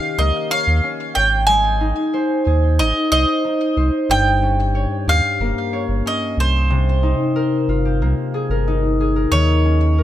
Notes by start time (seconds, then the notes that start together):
Already playing: D#3 A#3 C#4 D#4 G4 C#5 F5
0.18 C#2 A#3 D#5
0.50 C#5 F5
0.67 D#2
0.83 C#4
1.15 G#1 C#5 G5
1.47 G#3 G#5
1.81 D#4
2.14 C5
2.46 D#2 G#4
2.79 G#1 D#4 D#5
3.12 C2 C5 D#5
3.44 D#4
3.77 C2 C5
4.09 G1 G2 G5
4.42 C#4
4.75 C#5
5.07 D#2 G4 F5
5.40 F1 A#3
5.73 C#5
5.88 G1
6.06 C#4 D#5
6.37 C2 C5
6.70 C3
7.03 D#4
7.36 A#4
7.68 G1 F4
7.85 G4
8.01 C2 A#3
8.34 G#4
8.49 G1 A#4
8.68 D#4
9.01 G#4
9.16 A#4
9.31 D#2 D#3 C#5
9.65 C#4
9.98 A#4